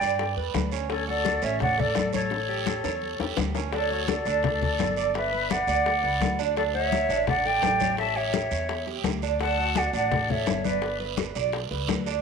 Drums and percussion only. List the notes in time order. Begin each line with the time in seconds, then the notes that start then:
0.02 high bongo, high conga, short guiro
0.19 high bongo, high conga, long guiro
0.37 high bongo, high conga
0.54 high bongo, low bongo, high conga, short guiro
0.71 high bongo, high conga, short guiro
0.90 high bongo, high conga, long guiro
1.09 high conga
1.25 high bongo, high conga, short guiro
1.42 high conga, short guiro
1.59 high bongo, high conga, low conga, long guiro
1.80 high conga, low conga
1.95 high bongo, low bongo, high conga, short guiro
2.13 high conga, short guiro
2.30 high bongo, high conga, long guiro
2.50 high conga
2.66 high bongo, high conga, short guiro
2.84 low bongo, high conga, short guiro
3.02 high conga, long guiro
3.20 low bongo, high conga
3.37 low bongo, high conga, short guiro
3.55 low bongo, high conga, short guiro
3.72 high bongo, high conga, long guiro
3.91 high conga
4.08 high bongo, high conga, short guiro
4.25 high conga, short guiro
4.43 high bongo, high conga, low conga, long guiro
4.62 high conga, low conga
4.79 high bongo, low bongo, high conga, short guiro
4.96 short guiro
5.14 high bongo, high conga, long guiro
5.34 high conga
5.50 high bongo, high conga, short guiro
5.68 high bongo, high conga, short guiro
5.86 high bongo, high conga, long guiro
6.04 high bongo, high conga
6.21 high bongo, low bongo, high conga, short guiro
6.39 high bongo, high conga, short guiro
6.56 high bongo, high conga, long guiro
6.75 high conga
6.92 high bongo, high conga, short guiro
7.10 high conga, short guiro
7.27 high bongo, high conga, low conga, long guiro
7.46 high conga
7.62 high bongo, low bongo, high conga, short guiro
7.80 high conga, short guiro
7.97 high bongo, high conga, long guiro
8.16 high conga
8.33 high bongo, high conga, short guiro
8.51 high bongo, high conga, short guiro
8.69 high bongo, high conga, long guiro
8.86 high bongo, high conga
9.04 high bongo, low bongo, high conga, short guiro
9.22 high bongo, high conga, short guiro
9.39 high bongo, high conga, long guiro
9.58 high conga
9.75 high bongo, high conga, short guiro
9.94 high conga, short guiro
10.11 high bongo, high conga, low conga, long guiro
10.30 high conga, low conga
10.46 high bongo, low bongo, high conga, short guiro
10.64 high conga, short guiro
10.82 high bongo, high conga, long guiro
11.00 high conga
11.17 high bongo, high conga, short guiro
11.35 high bongo, high conga, short guiro
11.52 high bongo, high conga, long guiro
11.71 high bongo, high conga
11.89 high bongo, low bongo, high conga, short guiro
12.06 high bongo, high conga, short guiro